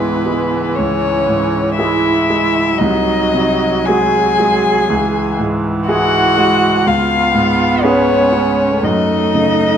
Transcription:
0.00 0.73 C#2 soft
0.00 1.28 G#2 soft
0.00 2.75 E3 soft
0.00 0.22 G#3 soft
0.00 0.79 B3 soft
0.00 0.22 E4 soft
0.00 0.22 G#4 soft
0.00 0.77 B4 soft
0.26 1.07 G#3 soft
0.75 2.76 C#2 soft
0.75 1.77 C#4 soft
0.75 1.75 C#5 soft
1.28 2.08 G#2 soft
1.76 2.25 G#3 soft
1.76 2.79 E4 soft
1.76 2.25 E4 soft
1.76 2.25 G#4 soft
1.76 2.80 E5 soft
2.30 2.80 G#3 soft
2.78 4.85 C2 soft
2.78 4.91 F#3 soft
2.78 3.89 D#4 soft
2.78 3.88 D#5 medium
3.34 4.19 C3 soft
3.86 4.35 G#3 soft
3.86 4.35 F#4 soft
3.86 5.38 G#4 soft
3.86 4.36 G#4 soft
3.86 5.38 G#5 medium
4.40 4.89 G#3 soft
4.89 6.82 C#2 soft
4.89 6.87 E3 soft
5.39 6.18 G#2 soft
5.88 6.33 G#3 soft
5.88 6.33 E4 soft
5.88 6.88 F#4 medium
5.88 6.34 G#4 soft
5.88 6.89 F#5 medium
6.37 6.86 G#3 soft
6.85 8.79 C#2 soft
6.85 8.82 B3 soft
6.85 7.87 F4 soft
6.85 7.85 F5 medium
7.34 8.13 G#2 soft
7.83 8.29 C#4 soft
7.83 8.85 C#4 soft
7.83 8.29 G#4 soft
7.83 8.29 B4 soft
7.83 8.86 C#5 medium
8.33 8.83 C#4 soft
8.82 9.78 F#2 soft
8.82 9.78 A3 soft
8.82 9.78 D#4 soft
8.82 9.78 D#5 medium
9.35 9.78 C#3 soft

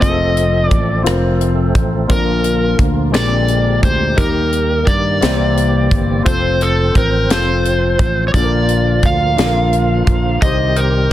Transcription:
0.00 2.07 F3 medium
0.00 2.08 A3 soft
0.00 2.06 C4 soft
0.00 0.96 C4 medium
0.00 0.96 F4 soft
0.00 0.09 G#4 soft
0.00 2.08 A4 medium
0.00 0.68 D#5 medium
0.00 kick medium
0.00 closed hi-hat medium
0.10 1.01 A4 medium
0.37 closed hi-hat soft
0.68 1.03 A1 medium
0.68 1.01 D5 medium
0.68 kick medium
0.68 closed hi-hat soft
1.03 1.71 F1 medium
1.03 1.99 C4 medium
1.03 2.00 F4 medium
1.03 1.12 A#4 medium
1.03 closed hi-hat medium
1.07 cross-stick medium
1.12 2.04 C5 medium
1.41 closed hi-hat soft
1.75 2.07 A1 medium
1.75 kick medium
1.75 closed hi-hat soft
2.07 2.75 A#1 medium
2.07 3.09 A#2 soft
2.07 4.15 D3 soft
2.07 3.12 F3 soft
2.07 3.12 A#3 soft
2.07 2.15 C4 soft
2.07 3.12 F4 medium
2.07 3.04 F4 medium
2.07 3.05 A#4 medium
2.07 kick medium
2.07 closed hi-hat medium
2.12 3.07 D4 medium
2.12 2.76 A#4 medium
2.44 closed hi-hat soft
2.79 3.13 D2 medium
2.79 kick medium
2.79 closed hi-hat soft
3.12 3.79 A#1 medium
3.12 4.13 A#2 medium
3.12 4.08 G#3 medium
3.12 4.17 G#3 soft
3.12 4.08 C4 medium
3.12 4.17 C4 soft
3.12 4.08 D4 medium
3.12 4.08 G4 soft
3.12 6.23 G4 medium
3.12 4.09 A#4 medium
3.12 3.84 D5 medium
3.12 snare loud
3.12 closed hi-hat medium
3.48 closed hi-hat soft
3.83 4.15 D2 medium
3.83 4.20 C5 medium
3.83 kick medium
3.83 closed hi-hat soft
4.16 4.83 D#2 medium
4.16 5.18 D#3 soft
4.16 5.21 D#3 medium
4.16 5.21 G3 soft
4.16 5.20 A#3 soft
4.16 5.12 D#4 medium
4.16 5.12 G4 medium
4.16 4.89 A#4 medium
4.16 5.13 A#4 medium
4.16 kick medium
4.16 closed hi-hat medium
4.53 closed hi-hat soft
4.87 5.19 G2 medium
4.87 6.22 D5 medium
4.87 kick medium
4.87 closed hi-hat soft
5.21 5.88 C2 medium
5.21 6.22 C3 medium
5.21 6.25 E3 medium
5.21 6.16 A#3 medium
5.21 6.24 A#3 soft
5.21 8.30 C4 soft
5.21 6.16 C4 medium
5.21 6.17 E4 medium
5.21 6.17 G4 soft
5.21 6.17 C5 medium
5.21 snare medium
5.21 closed hi-hat medium
5.57 closed hi-hat soft
5.91 6.23 G1 medium
5.91 kick medium
5.91 closed hi-hat soft
6.23 6.91 F1 medium
6.23 8.31 F3 medium
6.23 7.19 C4 medium
6.23 7.20 F4 soft
6.23 7.21 A4 medium
6.23 8.31 C5 medium
6.23 6.62 C5 medium
6.23 kick medium
6.23 closed hi-hat medium
6.61 6.97 A4 medium
6.61 closed hi-hat soft
6.95 7.30 A1 medium
6.95 7.29 A#4 medium
6.95 kick medium
6.95 closed hi-hat soft
7.30 7.95 F1 medium
7.30 8.24 C4 medium
7.30 8.25 F4 medium
7.30 8.26 A4 medium
7.30 8.28 C5 medium
7.30 snare medium
7.30 closed hi-hat medium
7.65 closed hi-hat soft
7.99 8.31 A1 medium
7.99 kick medium
7.99 closed hi-hat soft
8.28 8.34 C#5 medium
8.34 8.99 A#1 medium
8.34 9.35 A#2 soft
8.34 10.40 D3 medium
8.34 10.40 F3 soft
8.34 10.40 A#3 soft
8.34 9.29 D4 medium
8.34 10.40 F4 medium
8.34 9.29 F4 medium
8.34 8.42 A4 soft
8.34 9.06 D5 medium
8.34 kick loud
8.34 closed hi-hat medium
8.44 9.33 A#4 medium
8.69 closed hi-hat soft
9.03 9.35 D2 medium
9.03 10.47 F5 medium
9.03 kick medium
9.03 closed hi-hat soft
9.37 10.04 A#1 medium
9.37 10.32 D4 medium
9.37 10.32 F4 soft
9.37 9.45 A4 soft
9.37 snare medium
9.37 closed hi-hat medium
9.46 10.37 A#4 medium
9.73 closed hi-hat soft
10.07 10.39 A#1 medium
10.07 kick medium
10.07 closed hi-hat soft
10.42 11.07 C2 medium
10.42 11.13 C3 soft
10.42 11.13 D#3 soft
10.42 11.13 G3 soft
10.42 11.13 C4 soft
10.42 11.13 D#4 medium
10.42 11.13 G4 medium
10.42 11.13 C5 medium
10.42 10.78 D#5 medium
10.42 kick medium
10.42 closed hi-hat medium
10.76 11.12 A#4 medium
10.76 closed hi-hat soft

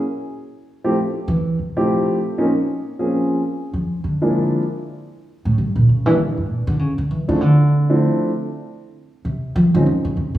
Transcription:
0.84 0.95 F3 medium
0.84 0.95 A3 medium
0.84 0.95 C4 medium
0.84 0.95 E4 medium
0.84 0.95 G4 medium
1.28 1.56 E3 medium
1.59 2.04 C3 medium
1.77 2.16 F3 medium
1.77 2.16 A3 medium
1.77 2.16 C4 medium
1.77 2.16 E4 medium
1.77 2.16 G4 medium
2.38 2.48 F3 medium
2.38 2.48 A#3 medium
2.38 2.48 C4 medium
2.38 2.48 C#4 medium
2.38 2.48 D#4 medium
2.99 3.39 F3 medium
2.99 3.39 A#3 soft
2.99 3.39 C4 medium
2.99 3.39 C#4 medium
2.99 3.39 G#4 medium
3.73 4.01 F3 medium
4.04 4.50 D3 medium
4.22 4.62 F3 medium
4.22 4.62 G#3 medium
4.22 4.62 A#3 medium
4.22 4.62 D4 soft
4.22 4.62 E4 medium
5.45 5.56 A2 medium
5.58 5.75 G2 medium
5.76 5.87 A#2 medium
5.89 6.06 C#3 medium
6.06 6.16 E3 medium
6.06 6.17 E3 loud
6.06 6.16 G3 medium
6.06 6.16 A#3 medium
6.06 6.17 D4 medium
6.06 6.17 E4 medium
6.19 6.37 D3 medium
6.38 6.49 G2 medium
6.49 6.67 A#2 medium
6.67 6.79 D3 loud
6.79 6.97 C#3 medium
6.98 7.09 D3 medium
7.11 7.28 E3 medium
7.28 7.41 C#3 medium
7.28 7.39 F3 medium
7.28 7.39 A3 soft
7.28 7.39 C4 soft
7.28 7.39 D4 medium
7.28 7.39 E4 medium
7.41 8.02 D3 medium
7.89 8.30 F3 medium
7.89 8.30 A3 medium
7.89 8.30 C4 medium
7.89 8.30 D4 medium
7.89 8.30 E4 medium
9.25 9.53 C3 medium
9.56 9.74 F3 loud
9.74 9.85 D3 loud
9.74 9.85 F3 medium
9.74 9.85 G#3 medium
9.74 9.85 C4 medium
9.74 9.85 C#4 medium
9.74 9.85 D#4 medium
9.86 10.04 D#3 medium
10.05 10.16 C#3 medium
10.17 10.34 C3 medium
10.35 10.38 A#2 medium

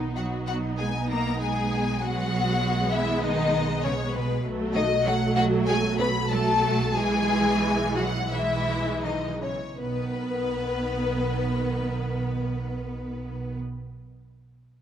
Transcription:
0.00 4.40 B1 loud
0.00 0.14 D#3 medium
0.00 0.12 B3 medium
0.00 0.12 D#4 medium
0.00 0.14 D#4 medium
0.15 0.46 F#3 medium
0.15 1.98 B3 medium
0.15 1.98 D#4 medium
0.15 0.47 F#4 medium
0.15 0.25 F#5 loud
0.47 0.78 F#3 medium
0.47 0.56 F#4 loud
0.47 0.55 F#5 loud
0.78 0.87 G#3 loud
0.78 0.86 G#4 medium
0.78 1.10 G#5 loud
1.10 1.40 A#3 loud
1.10 1.40 A#4 loud
1.10 1.41 A#5 loud
1.40 2.01 G#3 loud
1.40 2.00 G#4 loud
1.40 2.01 G#5 loud
2.00 2.93 F#3 loud
2.00 4.43 G#3 loud
2.00 4.43 B3 loud
2.00 2.91 F#4 loud
2.00 2.93 F#5 loud
2.93 3.23 E3 loud
2.93 3.23 E4 loud
2.93 3.23 E5 loud
3.23 3.83 D#3 loud
3.23 3.84 D#4 loud
3.23 3.84 D#5 loud
3.84 3.92 C#3 loud
3.84 3.92 C#4 loud
3.84 4.14 C#5 loud
4.13 4.43 B2 loud
4.13 4.23 B3 medium
4.13 4.44 B4 loud
4.43 9.51 B1 loud
4.43 5.02 F#3 loud
4.43 5.02 A3 loud
4.74 4.82 D#3 loud
4.74 4.83 D#4 loud
4.74 5.03 D#5 loud
5.03 6.27 F#3 loud
5.03 5.12 F#3 loud
5.03 6.27 A3 loud
5.03 5.14 F#4 loud
5.03 5.34 F#5 loud
5.36 5.66 F#3 loud
5.36 5.45 F#4 loud
5.36 5.44 F#5 loud
5.67 5.75 G#3 loud
5.67 5.76 G#4 loud
5.67 5.98 G#5 loud
5.99 6.07 B3 loud
5.99 6.08 B4 loud
5.99 6.30 B5 loud
6.30 6.94 F#3 loud
6.30 6.94 A3 loud
6.30 6.94 A4 loud
6.30 6.95 A5 loud
6.95 8.29 E3 loud
6.95 8.28 G#3 loud
6.95 7.94 G#3 loud
6.95 7.96 G#4 loud
6.95 7.96 G#5 loud
7.95 8.30 F#3 loud
7.95 8.04 F#4 loud
7.95 8.30 F#5 loud
8.31 9.52 E3 loud
8.31 9.04 E3 loud
8.31 9.52 G#3 loud
8.31 9.02 E4 loud
8.31 9.03 E5 loud
9.03 9.42 D#3 medium
9.03 9.42 D#4 medium
9.03 9.40 D#5 medium
9.41 9.79 C#3 medium
9.41 9.49 C#4 medium
9.41 9.79 C#5 medium
9.78 13.56 B1 loud
9.78 13.56 D#3 medium
9.78 13.55 B3 medium
9.78 13.56 B3 medium
9.78 13.56 B4 loud

